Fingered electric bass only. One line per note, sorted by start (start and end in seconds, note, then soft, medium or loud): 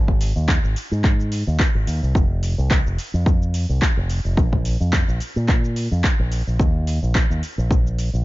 0.00 0.31 G#1 loud
0.36 0.58 D#2 medium
0.64 0.74 G#1 medium
0.91 1.42 G#2 medium
1.47 1.57 D#2 medium
1.75 1.85 G#1 medium
1.87 2.00 D#2 medium
2.03 2.13 C2 medium
2.15 2.53 F1 loud
2.58 2.80 C2 medium
2.86 2.96 F1 medium
3.14 3.64 F2 medium
3.69 3.79 C2 medium
3.97 4.19 F1 loud
4.25 4.35 F1 medium
4.37 4.76 A#1 loud
4.80 5.02 F2 medium
5.08 5.18 A#1 medium
5.36 5.87 A#2 medium
5.91 6.01 F2 medium
6.19 6.41 A#1 loud
6.47 6.57 A#1 medium
6.59 6.98 D#2 loud
7.03 7.24 A#1 loud
7.30 7.40 D#2 medium
7.58 8.09 A#1 medium
8.13 8.24 A#1 medium